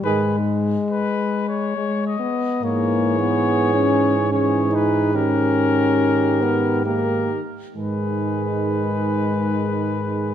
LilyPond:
<<
  \new Staff \with { instrumentName = "Trumpet" } { \time 3/4 \key gis \minor \tempo 4 = 69 b'8 r8 \tuplet 3/2 { b'4 cis''8~ cis''8 dis''4 } | cis''2 cis''8 b'8 | ais'2 ais'8 r8 | b'2. | }
  \new Staff \with { instrumentName = "Flugelhorn" } { \time 3/4 \key gis \minor gis'8 r2 r8 | gis'2 gis'4 | g'2 g'8 r8 | gis'2. | }
  \new Staff \with { instrumentName = "French horn" } { \time 3/4 \key gis \minor gis2 gis8 b8 | \tuplet 3/2 { ais4 b8~ b8 cis'4 } cis'8 dis'8 | cis'4. b8 ais8 r8 | gis2. | }
  \new Staff \with { instrumentName = "Euphonium" } { \clef bass \time 3/4 \key gis \minor dis8 r2 r8 | e2 e4 | dis2 dis8 r8 | dis2. | }
  \new Staff \with { instrumentName = "Bass trombone" } { \clef bass \time 3/4 \key gis \minor gis,4 r2 | gis,2.~ | gis,2~ gis,8 r8 | gis,2. | }
>>